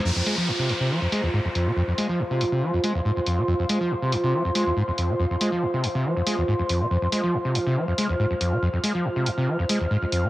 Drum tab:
HH |-o-o-o-o|-o-o-o-o|-o-o-o-o|-o-o-o-o|

HH |-o-o-o-o|-o-o-o-o|